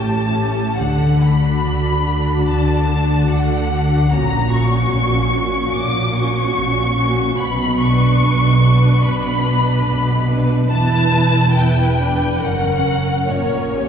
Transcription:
Already playing: double bass section A1, cello section A2, viola section C#4 G4, violin section A5
0.32 viola section C#4 G4
0.77 double bass section D2, cello section D3, violin section F#5
1.23 viola section D4 F#4, violin section B5
1.66 double bass section D2, cello section D3
2.07 viola section D4 F#4
2.49 double bass section D2, cello section D3, violin section A5
2.89 viola section D4 F#4
3.31 double bass section D2, cello section D3, violin section F#5
3.71 viola section D4 F#4
4.10 double bass section A#1, cello section A#2, viola section C#4 F#4, violin section A#5
4.51 viola section C#4 F#4, violin section C#6
4.93 double bass section A#1, cello section A#2
5.33 viola section C#4 F#4
5.74 double bass section A#1, cello section A#2, violin section D6
6.15 viola section C#4 F#4, violin section C#6
6.55 double bass section A#1, cello section A#2
6.97 viola section C#4 F#4
7.39 double bass section B1, cello section B2, violin section B5
7.80 viola section D4 B4, violin section C#6
8.22 double bass section B1, cello section B2
8.63 viola section D4 B4
9.03 double bass section B1, cello section B2, violin section B5
9.45 viola section D4 B4
9.86 double bass section B1, cello section B2, violin section B5
10.29 viola section D4 B4
10.70 double bass section E1, cello section E2, viola section E4 B4, violin section A5
11.56 viola section E4 B4, violin section G5
12.01 viola section D4
12.41 double bass section F#1, cello section F#2, viola section C#4 A#4, violin section F#5
13.29 double bass section A#1, cello section A#2, viola section C#4 A#4, violin section C#5
13.77 viola section G4

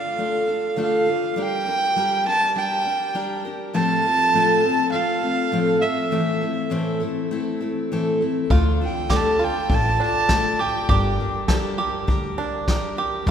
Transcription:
Already playing: steel-string acoustic guitar D4 F4 A4, fiddle F5
0.18 steel-string acoustic guitar A3 D4 F4 A4
0.47 steel-string acoustic guitar D4 F4 A4
0.76 steel-string acoustic guitar D3 A3 D4 F4 A4
0.83 fiddle F5
1.07 steel-string acoustic guitar D4 F4 A4
1.33 steel-string acoustic guitar G3, fiddle F5
1.37 steel-string acoustic guitar D4 G4 A#4
1.42 fiddle G5
1.66 steel-string acoustic guitar D4 G4 A#4
1.96 steel-string acoustic guitar G3 D4 G4 A#4
2.26 steel-string acoustic guitar D4 G4 A#4, fiddle A5
2.56 steel-string acoustic guitar G3 D4 G4 A#4, fiddle G5
2.85 steel-string acoustic guitar D4 G4 A#4
3.15 steel-string acoustic guitar G3 D4 G4 A#4
3.45 steel-string acoustic guitar D4 G4 A#4
3.74 steel-string acoustic guitar A2 F3 A3 C4 F4 A4, fiddle A5
4.05 steel-string acoustic guitar A3 C4 F4 A4
4.34 steel-string acoustic guitar A2 F3 A3 C4 F4 A4
4.63 steel-string acoustic guitar A3 C4 F4 A4
4.91 steel-string acoustic guitar A3 C4 F4 A4, fiddle F5
5.22 steel-string acoustic guitar A3 C4 F4 A4
5.52 steel-string acoustic guitar A2 F3 A3 C4 F4 A4
5.81 steel-string acoustic guitar A3 F4 A4, fiddle E5
6.11 steel-string acoustic guitar A2 E3 A3 C4 E4 A4
6.41 steel-string acoustic guitar A3 C4 E4 A4
6.70 steel-string acoustic guitar A2 E3 A3 C4 E4 A4
7.00 steel-string acoustic guitar A3 C4 E4 A4
7.31 steel-string acoustic guitar A3 C4 E4 A4
7.61 steel-string acoustic guitar A3 C4 E4 A4
7.92 steel-string acoustic guitar A2 E3 A3 C4 E4 A4
8.21 steel-string acoustic guitar A3 C4 E4 A4
8.50 upright bass D2, steel-string acoustic guitar D3 A3 D4 F4 A4, five-string banjo F4, kick
8.81 steel-string acoustic guitar D4 F4 A4, fiddle G5
9.09 steel-string acoustic guitar D3 A3 D4 F4 A4, five-string banjo G4, kick, snare
9.15 fiddle A5
9.39 steel-string acoustic guitar D4 F4 A4, five-string banjo F4
9.44 fiddle G5
9.70 upright bass A1, steel-string acoustic guitar A3 D4 F4 A4, kick
9.74 fiddle A5
10.00 five-string banjo D4, steel-string acoustic guitar D4 F4 A4, fiddle A5
10.29 steel-string acoustic guitar D3 A3 D4 F4 A4, kick, snare
10.59 steel-string acoustic guitar D4 F4 A4, five-string banjo G4, fiddle G5
10.89 upright bass G1, steel-string acoustic guitar G3 D4 G4 A#4, five-string banjo G4, kick
11.20 steel-string acoustic guitar D4 G4 A#4
11.48 steel-string acoustic guitar G3 D4 G4 A#4, five-string banjo A4, kick, snare
11.78 steel-string acoustic guitar D4 G4 A#4, five-string banjo G4
12.07 upright bass D2, steel-string acoustic guitar G3 D4 G4 A#4, kick
12.38 five-string banjo D4, steel-string acoustic guitar D4 G4 A#4
12.68 steel-string acoustic guitar G3 D4 G4 A#4, kick, snare
12.97 steel-string acoustic guitar D4 G4 A#4, five-string banjo G4
13.26 upright bass A1, steel-string acoustic guitar A2 F3 A3 C4 F4, kick

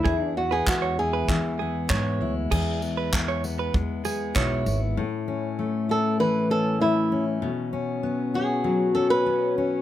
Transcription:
Already playing: steel-string acoustic guitar F#3 A3 D4 E4, nylon-string guitar E4
0.04 upright bass E2, steel-string acoustic guitar E2, clean electric guitar G#4, kick
0.25 nylon-string guitar D4
0.37 steel-string acoustic guitar B3, nylon-string guitar F#4
0.51 nylon-string guitar G#4, clean electric guitar B4
0.67 upright bass E2, steel-string acoustic guitar G#3, nylon-string guitar F#4, kick, clap
0.82 clean electric guitar C#5
0.99 steel-string acoustic guitar E4, nylon-string guitar G#4
1.13 clean electric guitar B4
1.29 upright bass E2, steel-string acoustic guitar E3, kick, clap
1.59 steel-string acoustic guitar B3, clean electric guitar G#4
1.90 upright bass G#2, steel-string acoustic guitar G#3, clean electric guitar C#5, kick, clap
2.21 upright bass D2, steel-string acoustic guitar E4
2.51 steel-string acoustic guitar E2 E4, upright bass E2, clean electric guitar G#4, kick, crash
2.82 steel-string acoustic guitar B3, tambourine
2.97 clean electric guitar B4
3.13 steel-string acoustic guitar G#3, kick, clap
3.28 clean electric guitar C#5
3.44 steel-string acoustic guitar B3, tambourine
3.59 clean electric guitar B4
3.74 upright bass E2, steel-string acoustic guitar G#3, kick
4.05 steel-string acoustic guitar B3, clean electric guitar G#4, tambourine
4.35 upright bass B1, steel-string acoustic guitar E4, clean electric guitar C#5, kick, clap
4.66 upright bass G#1, steel-string acoustic guitar B3, tambourine
4.96 steel-string acoustic guitar A2, french horn section E3 A3 C#4
5.28 steel-string acoustic guitar C#4
5.59 steel-string acoustic guitar A3
5.89 steel-string acoustic guitar E4, nylon-string guitar A4
6.20 steel-string acoustic guitar E3, nylon-string guitar B4
6.50 steel-string acoustic guitar C#4, nylon-string guitar A4
6.81 steel-string acoustic guitar A3, nylon-string guitar E4
7.12 steel-string acoustic guitar C#4
7.42 steel-string acoustic guitar B2, french horn section F#3 B3
7.73 steel-string acoustic guitar C#4
8.03 steel-string acoustic guitar B3
8.34 steel-string acoustic guitar F#4, nylon-string guitar G#4
8.64 steel-string acoustic guitar F#3
8.95 steel-string acoustic guitar C#4, nylon-string guitar A4
9.10 nylon-string guitar B4
9.26 steel-string acoustic guitar B3
9.58 steel-string acoustic guitar C#4

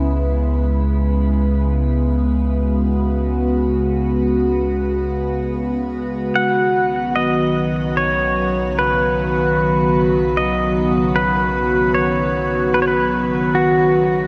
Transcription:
Already playing: sub bass C#2, ambient pad C#3 G#3 B3 E4 B4
2.41 ambient pad F#4
6.35 sub bass B1, synth drone C#3 F#3, ambient pad D#3, pedal steel guitar F#5
6.92 ambient pad F#3
7.16 pedal steel guitar D#5
7.97 pedal steel guitar C#5
8.79 pedal steel guitar B4
10.37 pedal steel guitar D#5
11.16 pedal steel guitar B4
11.95 pedal steel guitar C#5
12.74 pedal steel guitar B4
12.82 pedal steel guitar C#5
12.88 pedal steel guitar B4
13.55 pedal steel guitar F#4

